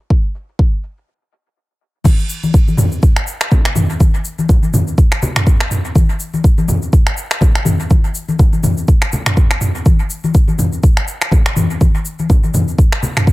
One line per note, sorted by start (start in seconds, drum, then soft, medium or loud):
0.10 kick loud
0.24 shaker soft
0.35 shaker medium
0.48 shaker soft
0.59 kick loud
0.73 shaker soft
0.83 shaker medium
0.97 shaker soft
2.04 kick loud
2.04 crash loud
2.04 high conga medium
2.04 shaker medium
2.19 shaker soft
2.30 shaker loud
2.43 high conga medium
2.43 shaker soft
2.54 kick loud
2.54 shaker medium
2.68 high conga medium
2.68 shaker soft
2.77 mid tom medium
2.77 high conga medium
2.77 low conga medium
2.77 shaker medium
2.92 shaker soft
3.03 kick loud
3.03 shaker medium
3.16 finger snap medium
3.16 shaker soft
3.27 shaker medium
3.41 finger snap medium
3.41 shaker soft
3.52 kick loud
3.52 low conga loud
3.52 shaker medium
3.65 finger snap medium
3.65 shaker soft
3.75 mid tom medium
3.75 high conga loud
3.75 shaker loud
3.90 shaker soft
4.00 kick loud
4.00 high conga medium
4.00 shaker medium
4.14 shaker soft
4.25 shaker loud
4.39 high conga medium
4.39 shaker soft
4.49 kick loud
4.49 low conga medium
4.49 shaker medium
4.63 high conga medium
4.63 shaker soft
4.74 mid tom medium
4.74 high conga medium
4.74 low conga medium
4.74 shaker medium
4.88 shaker soft
4.98 kick loud
4.98 shaker medium
5.12 finger snap medium
5.12 shaker soft
5.22 low conga loud
5.22 shaker medium
5.36 finger snap medium
5.36 mid tom medium
5.36 shaker soft
5.47 kick loud
5.47 shaker medium
5.60 finger snap medium
5.60 shaker soft
5.71 mid tom medium
5.71 shaker loud
5.85 shaker soft
5.95 kick loud
5.95 high conga loud
5.95 shaker medium
6.09 shaker soft
6.20 shaker loud
6.34 high conga medium
6.34 shaker soft
6.44 kick loud
6.44 shaker medium
6.58 high conga medium
6.58 shaker soft
6.68 mid tom medium
6.68 high conga medium
6.68 low conga medium
6.68 shaker loud
6.82 shaker soft
6.93 kick loud
6.93 shaker medium
7.07 finger snap loud
7.07 shaker soft
7.17 shaker medium
7.31 finger snap medium
7.31 shaker soft
7.41 kick loud
7.41 low conga loud
7.41 shaker medium
7.55 finger snap medium
7.55 shaker soft
7.65 mid tom medium
7.65 high conga medium
7.65 shaker loud
7.80 shaker soft
7.90 kick loud
7.90 high conga medium
7.90 shaker medium
8.04 shaker soft
8.15 shaker loud
8.28 high conga medium
8.28 shaker soft
8.39 kick loud
8.39 low conga medium
8.39 shaker medium
8.53 high conga medium
8.53 shaker soft
8.63 mid tom medium
8.63 high conga medium
8.63 low conga medium
8.63 shaker medium
8.77 shaker soft
8.88 kick loud
8.88 shaker medium
9.02 finger snap medium
9.02 shaker soft
9.12 low conga medium
9.12 shaker medium
9.26 finger snap medium
9.26 mid tom medium
9.26 shaker soft
9.37 kick loud
9.37 shaker medium
9.51 finger snap medium
9.51 shaker soft
9.61 mid tom medium
9.61 shaker loud
9.75 shaker soft
9.86 kick loud
9.86 high conga medium
9.86 shaker medium
9.99 shaker soft
10.10 shaker loud
10.24 high conga medium
10.24 shaker soft
10.34 kick loud
10.34 shaker medium
10.48 high conga medium
10.48 shaker soft
10.58 mid tom medium
10.58 high conga medium
10.58 low conga medium
10.58 shaker medium
10.73 shaker soft
10.83 kick loud
10.83 shaker medium
10.97 finger snap medium
10.97 shaker soft
11.08 shaker medium
11.22 finger snap medium
11.22 shaker soft
11.31 kick loud
11.31 low conga loud
11.31 shaker medium
11.46 finger snap medium
11.46 shaker soft
11.56 mid tom medium
11.56 high conga medium
11.56 shaker loud
11.70 shaker soft
11.81 kick loud
11.81 high conga medium
11.81 shaker medium
11.95 shaker soft
12.05 shaker loud
12.19 high conga medium
12.19 shaker soft
12.30 kick loud
12.30 low conga medium
12.30 shaker medium
12.44 high conga medium
12.44 shaker soft
12.54 mid tom medium
12.54 high conga medium
12.54 low conga medium
12.54 shaker medium
12.68 shaker soft
12.78 kick loud
12.78 shaker medium
12.92 finger snap medium
12.92 shaker soft
13.03 low conga loud
13.03 shaker medium
13.17 finger snap medium
13.17 mid tom medium
13.17 shaker soft
13.27 kick loud
13.27 shaker medium